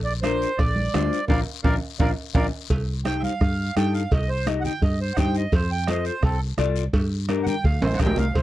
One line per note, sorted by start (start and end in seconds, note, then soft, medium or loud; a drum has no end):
0.00 0.45 A#1 medium
0.05 0.13 D5 loud
0.22 0.48 D4 medium
0.22 0.49 F4 medium
0.22 0.49 A#4 medium
0.22 0.59 C5 loud
0.22 bombo rim medium
0.22 cowbell medium
0.22 high conga medium
0.22 short guiro medium
0.42 short guiro medium
0.58 0.87 A#1 loud
0.58 1.25 D5 medium
0.58 bombo low medium
0.58 bombo rim medium
0.58 cowbell medium
0.58 high conga soft
0.58 long guiro medium
0.76 high conga medium
0.94 1.09 D2 loud
0.94 1.19 D4 medium
0.94 1.19 F4 medium
0.94 1.19 C5 medium
0.94 bombo rim medium
0.94 cowbell medium
0.94 high conga medium
0.94 low timbale medium
0.94 short guiro medium
1.13 short guiro medium
1.28 1.43 A#1 loud
1.28 1.41 D4 loud
1.28 1.41 F4 loud
1.28 1.40 A#4 medium
1.28 1.41 A#4 medium
1.28 1.40 D5 medium
1.28 1.40 F5 medium
1.28 bombo low medium
1.28 low conga medium
1.28 high timbale loud
1.28 long guiro loud
1.64 1.78 A#1 medium
1.64 1.76 D4 medium
1.64 1.77 F4 medium
1.64 1.75 A#4 medium
1.64 1.77 A#4 medium
1.64 1.75 D5 medium
1.64 1.75 F5 medium
1.64 bombo low loud
1.64 low conga loud
1.64 high timbale loud
2.00 2.13 A#1 medium
2.00 2.12 D4 loud
2.00 2.12 F4 medium
2.00 2.11 A#4 medium
2.00 2.12 A#4 medium
2.00 2.11 D5 medium
2.00 2.11 F5 medium
2.00 bombo low medium
2.00 low conga medium
2.00 high timbale loud
2.00 long guiro medium
2.35 2.48 A#1 loud
2.35 2.47 D4 medium
2.35 2.47 F4 medium
2.35 2.46 A#4 loud
2.35 2.47 A#4 medium
2.35 2.47 D5 loud
2.35 2.46 F5 medium
2.35 bombo low medium
2.35 low conga medium
2.35 high timbale loud
2.35 long guiro loud
2.70 3.27 C2 medium
2.70 bombo low medium
2.70 cowbell loud
2.70 high conga soft
2.70 long guiro medium
3.05 3.31 D#4 medium
3.05 3.31 G4 medium
3.05 3.31 C5 medium
3.05 3.23 G5 loud
3.05 bombo rim medium
3.05 cowbell medium
3.05 high conga medium
3.05 short guiro medium
3.20 3.22 E5 medium
3.20 high conga medium
3.24 3.75 F5 medium
3.24 short guiro medium
3.41 3.69 G2 medium
3.41 bombo low medium
3.41 bombo rim medium
3.41 cowbell medium
3.41 long guiro medium
3.76 4.05 G2 loud
3.76 4.01 D#4 medium
3.76 4.01 G4 medium
3.76 4.02 A4 medium
3.76 3.94 G5 medium
3.76 bombo rim medium
3.76 cowbell medium
3.76 high conga medium
3.76 short guiro medium
3.94 4.11 F5 medium
3.94 short guiro medium
4.11 4.68 C2 loud
4.11 4.29 D#5 medium
4.11 bombo low medium
4.11 cowbell loud
4.11 high conga soft
4.11 long guiro medium
4.29 4.46 C5 medium
4.46 4.71 D#4 medium
4.46 4.72 G4 medium
4.46 4.72 D#5 medium
4.46 bombo rim medium
4.46 cowbell medium
4.46 high conga medium
4.46 short guiro medium
4.61 4.63 F#5 medium
4.61 low conga medium
4.65 4.82 G5 medium
4.65 short guiro medium
4.82 5.10 G2 medium
4.82 5.00 D#5 medium
4.82 bombo low medium
4.82 cowbell medium
4.82 long guiro medium
5.01 5.18 C5 medium
5.14 5.46 G2 medium
5.14 5.43 D#4 medium
5.14 5.42 G4 medium
5.14 5.43 C5 medium
5.14 5.17 F#5 medium
5.14 bombo low medium
5.14 bombo rim medium
5.14 cowbell medium
5.14 high conga medium
5.14 low conga medium
5.14 short guiro medium
5.20 5.36 G5 loud
5.35 5.53 D#5 medium
5.35 short guiro medium
5.52 6.09 F2 loud
5.52 5.71 C5 medium
5.52 bombo low medium
5.52 cowbell loud
5.52 long guiro medium
5.72 5.88 G5 medium
5.87 6.13 F4 medium
5.87 6.14 A4 medium
5.87 6.14 C5 medium
5.87 6.05 D#5 medium
5.87 bombo rim medium
5.87 cowbell medium
5.87 high conga medium
5.87 short guiro medium
6.05 6.23 C5 medium
6.05 short guiro medium
6.22 6.51 C2 medium
6.22 6.39 C4 medium
6.22 6.41 A4 medium
6.22 bombo low medium
6.22 bombo rim medium
6.22 cowbell medium
6.22 high conga soft
6.22 long guiro medium
6.58 6.87 C2 loud
6.58 6.83 F4 medium
6.58 6.83 A4 medium
6.58 6.84 D5 loud
6.58 bombo rim medium
6.58 cowbell medium
6.58 high conga medium
6.58 short guiro medium
6.76 short guiro medium
6.93 7.50 G2 medium
6.93 bombo low medium
6.93 cowbell loud
6.93 high conga soft
6.93 long guiro medium
7.29 7.54 D4 medium
7.29 7.54 G4 medium
7.29 7.54 A#4 medium
7.29 bombo rim medium
7.29 cowbell medium
7.29 high conga medium
7.29 short guiro medium
7.43 7.46 F#5 medium
7.43 high conga medium
7.43 low conga medium
7.43 short guiro medium
7.48 7.65 G5 loud
7.64 7.79 D2 medium
7.64 7.82 F5 medium
7.64 bombo low medium
7.64 cowbell medium
7.64 high conga soft
7.64 long guiro medium
7.81 7.98 A1 medium
7.81 8.00 C5 medium
7.81 high conga medium
7.81 high timbale medium
7.93 7.99 F#5 medium
7.93 high conga medium
7.93 high timbale medium
7.99 8.16 A#1 medium
7.99 8.25 D4 medium
7.99 8.25 G4 medium
7.99 8.26 A#4 medium
7.99 8.17 G5 medium
7.99 bombo low medium
7.99 bombo rim medium
7.99 cowbell medium
7.99 short guiro medium
8.05 low conga medium
8.05 low timbale medium
8.16 8.33 C2 medium
8.16 8.36 F5 medium
8.16 low conga medium
8.16 low timbale medium
8.16 short guiro medium
8.35 8.42 C2 medium
8.35 8.42 C5 medium
8.35 bombo low medium
8.35 cowbell loud
8.35 long guiro medium